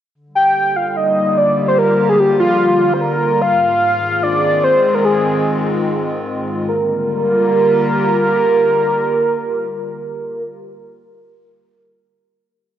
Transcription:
0.15 D3
0.27 G3
0.35 G5
0.48 A#3
0.76 F4 F5
0.90 F5
0.97 D#5
1.26 G4
1.38 D5
1.68 C5
1.78 A#4
2.09 G#4
2.19 G4
2.40 F4
2.94 C5
3.01 A#4
3.41 G#2 F5
3.66 G#4
3.71 D#3
3.97 C4
4.05 G#3
4.23 D5
4.64 C5
4.95 A#4
5.05 G#4
6.68 D3 A#4
6.74 G3
6.80 A#3
6.86 F4
6.92 G4

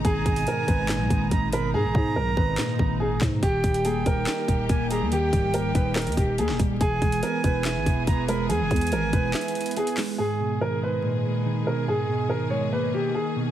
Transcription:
Already playing: B2 D#3 G#3 A#3 D#4 A#5
0.05 G#1 G#2 G#4 G#5, kick, closed hi-hat
0.26 G#1 B2, kick, closed hi-hat
0.36 closed hi-hat
0.47 D#3 A#4, closed hi-hat
0.68 G#1 G#3 B4, kick, closed hi-hat
0.89 A#2, snare, clap, closed hi-hat
1.00 B1
1.10 G#1, kick, closed hi-hat
1.31 G#1 D#3 A#5, kick, closed hi-hat
1.53 B2 A#4 B5, closed hi-hat
1.74 G#2 G#4 A#5
1.84 G#1
1.95 G#2 B2, kick
2.16 B1 D#3 A#4
2.37 G#1 G#3 B4, kick
2.58 A#2, snare, clap
2.79 G#1, kick
3.00 D#3 G#4
3.21 G#2 B2, kick, snare, clap
3.43 D#1 D#3 A#3 G4 G5, kick, closed hi-hat
3.64 D#1 G3, kick, closed hi-hat
3.74 closed hi-hat
3.85 A#3 G#4, closed hi-hat
4.06 D#1 D#4 A#4, kick, closed hi-hat
4.27 D#5, snare, clap, closed hi-hat
4.48 D#1, kick, closed hi-hat
4.69 D#1 A#3 G#5, kick, closed hi-hat
4.90 G3 G#4 A#5, closed hi-hat
5.01 D#2
5.12 D#3 G4 G5, closed hi-hat
5.33 C#1 G3, kick, closed hi-hat
5.54 A#3 A#4, closed hi-hat
5.74 D#1 D#4 B4, kick, closed hi-hat
5.96 A#4 D#5, snare, clap, closed hi-hat
6.01 closed hi-hat
6.07 D#2, closed hi-hat
6.12 closed hi-hat
6.17 D#1 G4, kick, closed hi-hat
6.38 D#2 A#3 G#4, closed hi-hat
6.49 D#1, snare
6.59 D#1 G3, kick, closed hi-hat
6.80 E1 E3 B3 G#4 G#5, kick, closed hi-hat
7.02 E1 G#3, kick, closed hi-hat
7.12 closed hi-hat
7.23 B3 A#4, closed hi-hat
7.44 E1 E4 B4, kick, closed hi-hat
7.65 E5, snare, clap, closed hi-hat
7.76 G#1
7.86 E1, kick, closed hi-hat
8.07 E1 B3 A#5, kick, closed hi-hat
8.28 G#3 A#4 B5, closed hi-hat
8.49 E2 E3 G#4 G#5, closed hi-hat
8.60 E1
8.71 E2 G#3, kick, closed hi-hat
8.76 closed hi-hat
8.81 closed hi-hat
8.87 closed hi-hat
8.92 G#1 B3 A#4, closed hi-hat
9.13 E1 E4 B4, kick, closed hi-hat
9.34 E5, snare, clap, closed hi-hat
9.41 closed hi-hat
9.48 closed hi-hat
9.55 closed hi-hat
9.61 closed hi-hat
9.66 closed hi-hat
9.71 closed hi-hat
9.76 B3 G#4, closed hi-hat
9.87 closed hi-hat
9.97 G#3, snare, clap, open hi-hat
10.18 G#2 D#3 G#3 G#4
10.40 B2
10.61 D#3 A#4
10.82 G#3 B4
11.03 A#2
11.45 D#3
11.67 B2 A#4
11.88 G#2 G#4
12.09 B2
12.29 D#3 A#4
12.50 G#3 C#5
12.72 A#3 B4
12.94 G4
13.14 D#3 G#4
13.36 B2

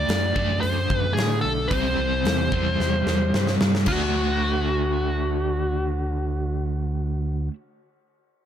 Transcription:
Already playing: D3 A3 D4 D5
0.08 F#2, snare, open hi-hat
0.35 F#2 D3 A3 D4, kick
0.61 F#2 C5, open hi-hat
0.90 F#2, kick
0.98 B4
1.13 A2 G#4
1.17 snare, open hi-hat
1.41 B1 A4
1.68 C2 C3 C5, kick, open hi-hat
1.72 G3 C4
1.98 C2
2.24 E2, snare, open hi-hat
2.52 E2 C3 G3 C4, kick
2.79 E2, snare
3.06 E2, snare
3.34 G2, snare
3.47 snare
3.61 G2, snare
3.75 snare
3.86 D2 D3 A3 F#4, kick, crash
3.91 D4

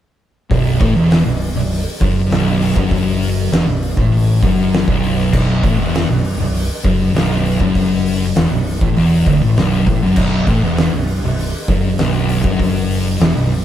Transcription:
0.50 B0 B1, kick, open hi-hat
0.80 A1 A2, kick, open hi-hat
0.95 E1 E2
1.11 snare, open hi-hat
1.25 B0 B1
1.41 open hi-hat
1.55 B0 B1
1.71 open hi-hat
2.01 F#1 F#2, kick, open hi-hat
2.31 B0 B1, snare, open hi-hat
2.61 open hi-hat
2.76 F#1 F#2, kick
2.91 kick, open hi-hat
3.22 open hi-hat
3.52 E1 E2, snare, open hi-hat
3.67 B0 B1
3.83 open hi-hat
3.97 A1 A2, kick
4.13 open hi-hat
4.43 F#1 F#2, kick, open hi-hat
4.73 snare, open hi-hat
4.88 B0 B1, kick
5.03 open hi-hat
5.33 B0 B1, kick, crash
5.64 A1 A2, kick, open hi-hat
5.78 E1 E2
5.94 snare, open hi-hat
6.09 B1
6.25 open hi-hat
6.39 B0 B1
6.54 open hi-hat
6.84 F#1 F#2, kick, open hi-hat
7.14 B0 B1, snare, open hi-hat
7.46 open hi-hat
7.60 F#1 F#2, kick
7.75 kick, open hi-hat
8.06 open hi-hat
8.35 E1 E2, snare, open hi-hat
8.50 B0 B1
8.66 open hi-hat
8.81 A1 A2, kick
8.96 E1 E2, open hi-hat
9.26 D1 D2, kick, open hi-hat
9.41 A1 A2
9.56 B0 B1, snare, open hi-hat
9.87 A1 A2, kick, open hi-hat
10.02 F#1 F#2
10.16 B0 B1, kick, crash
10.47 A1 A2, kick, open hi-hat
10.63 E1 E2
10.77 snare, open hi-hat
10.93 B0 B1
11.07 open hi-hat
11.24 B0 B1
11.37 open hi-hat
11.68 F#1 F#2, kick, open hi-hat
11.98 B0 B1, snare, open hi-hat
12.29 open hi-hat
12.43 F#1 F#2, kick
12.60 kick, open hi-hat
12.91 open hi-hat
13.20 E1 E2, snare, open hi-hat
13.35 B0 B1
13.51 open hi-hat

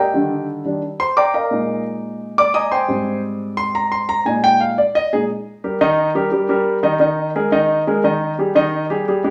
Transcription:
Already playing: D5 D#5 G5
0.00 G4
0.14 D3 D#3 G3
0.65 D#3 G3 D4
1.00 C5 C6
1.17 D5 G5 A#5 D6
1.34 A#4 D#5 F5 A#5
1.51 A#2 G#3 D#4
2.38 D5 D6
2.54 D#5 G#5 A#5 D#6
2.71 C5 G5 G#5 C6
2.88 G#2 G3 C4
3.57 C6
3.75 A#5
3.92 C6
4.09 A#5
4.25 A#2 G#3 D#4 G#5
4.44 G5
4.60 F5
4.78 D5
4.95 D#5
5.13 A#2 G#3 D#4 G#4
5.64 G3 G4 A#4
5.81 D#3 D#4 D#5
6.15 G3 G4 A#4
6.32 G3 G4 A#4
6.49 G3 G4 A#4
6.83 D#3 D#4 D#5
7.00 D#3 D#4 D#5
7.36 G#3 G#4 A#4
7.52 D#3 D#4 D#5
7.87 G#3 G#4 A#4
8.04 D#3 D#4 D#5
8.38 G3 G4 G#4
8.55 D#3 D#4 D#5
8.90 G3 G4 G#4
9.08 G3 G4 G#4
9.24 G#3 G4 G#4

